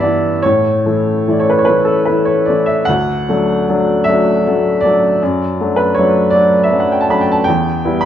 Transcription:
Already playing: G2 E3 B3 E4 E5
0.00 E3 B3 D5
0.04 E4
0.42 A2 C#5
0.86 E3 A3 E4
1.28 E3 A3 E4 D5
1.40 C#5
1.50 B4
1.59 C#5
1.65 E3 B4
1.69 A3 E4
1.85 A4
2.05 E3 B4
2.10 A3 E4
2.25 C#5
2.45 E3 A3 D5
2.50 E4
2.66 E5
2.85 D2 F#5
3.29 F#3 A3 D4
3.69 F#3 A3 D4
4.04 F#3 E5
4.08 A3 D4
4.47 F#3 A3 D4
4.81 F#3 D5
4.85 A3 D4
5.23 F#2
5.60 F#3 A3 D4
5.76 B4
5.95 F#3 A3 D4 C#5
6.30 F#3 D5
6.35 A3 D4
6.64 E5
6.71 F#3 A3 D4
6.80 F#5
6.92 G5
7.01 A5
7.09 F#3 A3 D4 B5
7.21 G5
7.32 A5
7.44 E2 G5
7.85 G3 B3 E4
8.01 B5

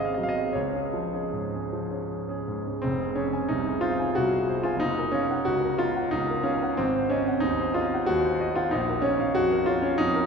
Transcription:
Already playing: D#5
0.00 C4 G#4
0.05 F5
0.14 F#3 D#5
0.23 F5
0.29 D#5
0.35 C4
0.53 C#2 C#5
0.74 C#4 G#4
0.93 F3
1.13 C#4 G#4
1.33 G#2
1.54 C#4 G#4
1.73 F3
1.91 C#4 G#4
2.28 C#4 G#4
2.48 G#2
2.67 C#4 G#4
2.82 F1 C4
3.01 G#4
3.15 C#4 C5
3.33 G#5
3.49 C2 D#4
3.67 G#4
3.81 F4 C5
4.00 G#5
4.15 C2 F#4
4.49 C5
4.63 F4 G#5
4.76 F#1 D#4
4.99 A#4
5.12 C#4 F5
5.31 F#5
5.45 C#2 F#4
5.65 A#4
5.78 F4 F5
5.96 F#5
6.11 C#2 D#4
6.30 A#4
6.43 C#4 F5
6.63 F#5
6.77 G#1 C4
6.96 C5
7.10 C#4 D#5
7.28 F#5
7.40 D#2 D#4
7.60 C5
7.74 F4 D#5
7.94 F#5
8.06 D#2 F#4
8.25 C5
8.41 D#5
8.56 F4 F#5
8.71 A#1 D#4
8.89 A#4
9.02 C#4 C#5
9.20 F5
9.35 F2 F#4
9.52 A#4
9.66 F4 C#5
9.82 C#4 F5
9.98 F2 D#4
10.16 A#4

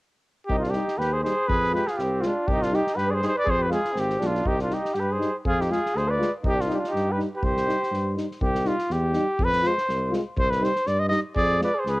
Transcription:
0.47 C2 D#4 G4, kick
0.60 F4, snare
0.65 D4
0.70 G3 G4, snare
0.74 D#4
0.88 snare
0.98 D#2 G4 B4, snare
1.13 G#4 C5
1.23 G3 D#4 G#4 C5, snare
1.48 F2 G#4 B4, kick
1.64 snare
1.72 G#3 F4 G4 B4, snare
1.87 F4 G#4, snare
1.97 C2 G4, snare
2.02 C4
2.21 G#3 F4, snare
2.27 D4
2.47 C2 G4, kick
2.52 D#4
2.62 D4 F4, snare
2.71 G3 D#4 G4, snare
2.87 snare
2.96 G2 G4 B4, snare
3.06 G#4 B4
3.11 C5 D5
3.22 G3 D#4 G#4, snare
3.28 C5
3.35 B4 D5
3.45 F2 G#4, kick
3.50 C5
3.59 G4 B4
3.70 G#3 F4 G#4, snare
3.85 snare
3.93 G#1 C4, snare
4.00 G4
4.10 snare
4.19 B1 G#3 D4 F4, snare
4.26 F4
4.35 snare
4.45 C2 D#4 G4, kick
4.59 D4 F4, snare
4.69 G3 D#4, snare
4.74 G4
4.85 snare
4.94 G2 G4, snare
5.00 B4
5.11 G#4 C5
5.19 G3 D#4, snare
5.45 F2 F4 G#4, kick
5.61 D#4 G4, snare
5.69 G#3 F4 G#4, snare
5.86 snare
5.95 D2 G#4 C5, snare
6.08 B4 D5
6.18 G#3 F4, snare
6.43 C2 D#4, kick
6.48 G4
6.55 D4
6.60 F4, snare
6.68 G3 D#4, snare
6.74 D4 F4 G4
6.84 D#4, snare
6.89 G4
6.94 G2, snare
7.10 G4 B4
7.17 G3 D#4, snare
7.34 G4 B4
7.43 C2 G4 C5, kick
7.57 snare
7.66 G3 D#4, snare
7.83 snare
7.92 G2, snare
8.16 G3 D#4, snare
8.31 snare
8.41 C2 G4, kick
8.55 snare
8.64 G3 D#4 F4, snare
8.78 snare
8.90 E2 G4, snare
9.13 G3 D#4, snare
9.39 F2, kick
9.44 B4
9.53 snare
9.62 G#3 F4, snare
9.67 C5
9.78 snare
9.89 C2, snare
10.10 G#3 F4, snare
10.37 C2 C5, kick
10.50 B4, snare
10.60 G3 D#4 C5, snare
10.76 snare
10.86 G2 D5, snare
10.99 D#5
11.09 G3 D#4 D#5, snare
11.36 F2 G#4 D5, kick
11.59 G#3 F4 B4 D5, snare
11.75 G#4
11.79 C5
11.86 C#2 G#4 B4, snare

